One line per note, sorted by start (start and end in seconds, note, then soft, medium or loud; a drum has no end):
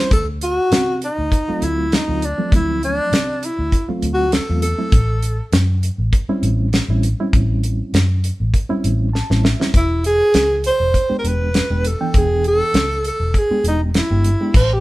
0.00 0.11 G3 medium
0.00 0.11 C4 medium
0.00 0.11 C#4 medium
0.00 0.11 E4 medium
0.00 0.10 C5 medium
0.11 0.58 D2 medium
0.11 0.26 A4 medium
0.11 kick loud
0.11 closed hi-hat medium
0.41 0.99 F#4 loud
0.41 closed hi-hat medium
0.72 1.08 C3 medium
0.72 snare loud
0.72 closed hi-hat medium
1.02 1.66 D#4 medium
1.02 closed hi-hat medium
1.18 1.29 D2 medium
1.32 kick medium
1.32 closed hi-hat medium
1.48 1.86 F#3 medium
1.48 1.86 A3 medium
1.48 1.86 C4 medium
1.48 1.86 F4 medium
1.48 muted fingered electric bass stroke soft
1.62 1.98 D2 medium
1.62 1.97 E4 medium
1.62 closed hi-hat medium
1.92 2.27 D#4 medium
1.92 snare loud
1.92 closed hi-hat medium
2.08 2.32 D2 loud
2.08 2.27 F#3 medium
2.08 2.27 A3 medium
2.08 2.27 C4 medium
2.08 2.27 F4 medium
2.22 2.54 D4 medium
2.22 closed hi-hat medium
2.38 3.15 F3 medium
2.38 3.15 F#3 medium
2.38 3.15 A3 medium
2.38 3.15 C4 medium
2.52 2.99 D2 medium
2.52 2.82 E4 medium
2.52 kick loud
2.52 closed hi-hat medium
2.83 3.47 D4 medium
2.83 closed hi-hat soft
3.12 3.48 C3 medium
3.12 snare loud
3.12 closed hi-hat medium
3.43 3.88 E4 medium
3.43 closed hi-hat medium
3.59 3.69 D2 medium
3.72 kick medium
3.72 closed hi-hat medium
3.89 4.27 F#3 medium
3.89 4.27 A3 medium
3.89 4.27 C4 medium
3.89 4.27 F4 medium
3.89 muted fingered electric bass stroke soft
4.02 4.39 D2 medium
4.02 closed hi-hat medium
4.14 4.32 F#4 loud
4.32 4.61 A4 medium
4.32 snare medium
4.32 closed hi-hat medium
4.49 4.73 E2 medium
4.49 4.68 F#3 medium
4.49 4.68 A3 medium
4.49 4.68 C4 medium
4.49 4.68 F4 medium
4.62 5.49 A4 medium
4.62 closed hi-hat medium
4.78 4.92 F#3 medium
4.78 4.93 A3 medium
4.78 4.92 C4 medium
4.78 4.93 E4 medium
4.92 5.39 A1 medium
4.92 kick loud
4.92 closed hi-hat medium
5.22 closed hi-hat medium
5.52 5.89 F#2 medium
5.52 snare loud
5.52 closed hi-hat medium
5.83 closed hi-hat medium
5.98 6.09 A1 medium
6.13 kick medium
6.13 closed hi-hat medium
6.29 6.67 G3 loud
6.29 6.67 C4 medium
6.29 6.67 C#4 medium
6.29 6.67 E4 medium
6.29 muted fingered electric bass stroke soft
6.42 6.79 A1 medium
6.42 closed hi-hat medium
6.73 snare loud
6.73 closed hi-hat medium
6.88 7.12 A1 medium
6.88 7.09 G3 medium
6.88 7.08 C4 medium
6.88 7.08 C#4 medium
6.88 7.08 E4 medium
7.03 closed hi-hat medium
7.20 7.96 G3 medium
7.20 7.96 C4 medium
7.20 7.96 C#4 medium
7.20 7.96 E4 loud
7.33 7.80 A1 medium
7.33 kick loud
7.33 closed hi-hat medium
7.63 closed hi-hat medium
7.93 8.29 F#2 medium
7.93 snare loud
7.93 closed hi-hat medium
8.24 closed hi-hat medium
8.40 8.51 A1 medium
8.54 kick medium
8.54 closed hi-hat medium
8.70 9.08 G3 medium
8.70 9.08 C4 medium
8.70 9.08 C#4 medium
8.70 9.08 E4 loud
8.70 muted fingered electric bass stroke soft
8.84 9.20 A1 medium
8.84 closed hi-hat medium
9.13 9.42 A5 medium
9.13 snare medium
9.30 9.53 A1 medium
9.30 9.49 G3 medium
9.30 9.49 C4 medium
9.30 9.49 C#4 medium
9.30 9.49 E4 medium
9.30 snare medium
9.44 9.72 E5 medium
9.44 snare loud
9.60 9.74 G3 medium
9.60 9.74 C4 medium
9.60 9.74 C#4 medium
9.60 9.74 E4 medium
9.60 snare medium
9.74 10.20 E1 medium
9.74 10.03 E4 medium
9.74 kick loud
9.74 closed hi-hat medium
10.04 10.61 G#4 loud
10.04 closed hi-hat medium
10.34 10.70 C#2 loud
10.34 snare loud
10.34 closed hi-hat medium
10.64 11.16 C5 loud
10.64 closed hi-hat medium
10.80 10.91 E1 medium
10.94 kick medium
10.94 closed hi-hat medium
11.09 11.48 G#3 medium
11.09 11.48 B3 medium
11.09 11.48 D4 medium
11.09 11.48 G4 medium
11.09 muted fingered electric bass stroke soft
11.19 11.29 A#4 medium
11.24 11.60 E1 medium
11.24 11.89 B4 loud
11.24 closed hi-hat medium
11.54 snare loud
11.54 closed hi-hat medium
11.70 11.94 E1 medium
11.70 11.89 G#3 medium
11.70 11.89 B3 medium
11.70 11.89 D4 medium
11.70 11.89 G4 medium
11.85 12.19 A4 medium
11.85 closed hi-hat medium
12.01 12.77 E3 medium
12.01 12.77 B3 medium
12.01 12.77 D4 medium
12.01 12.77 G5 medium
12.14 12.61 E1 medium
12.14 12.46 G#4 loud
12.14 kick loud
12.14 closed hi-hat medium
12.44 13.02 A4 loud
12.44 closed hi-hat medium
12.74 13.10 C#2 loud
12.74 snare loud
12.74 closed hi-hat medium
13.04 13.40 A4 medium
13.04 closed hi-hat medium
13.20 13.31 E1 medium
13.34 kick medium
13.34 closed hi-hat medium
13.39 13.67 G#4 medium
13.50 13.89 G#3 medium
13.50 13.89 B3 medium
13.50 13.89 D4 medium
13.50 13.89 G4 medium
13.50 muted fingered electric bass stroke soft
13.64 14.00 E1 medium
13.64 closed hi-hat medium
13.68 13.81 D#4 medium
13.94 14.56 E4 medium
13.94 snare medium
13.94 closed hi-hat medium
14.10 14.34 G1 medium
14.10 14.29 G#3 medium
14.10 14.29 B3 medium
14.10 14.29 D4 medium
14.10 14.29 G4 medium
14.24 closed hi-hat medium
14.41 14.55 G#3 medium
14.41 14.54 B3 medium
14.41 14.54 D4 medium
14.41 14.55 G4 medium
14.54 14.80 A1 medium
14.54 14.75 C5 loud
14.54 kick loud
14.54 closed hi-hat medium
14.54 crash medium
14.73 14.80 G4 loud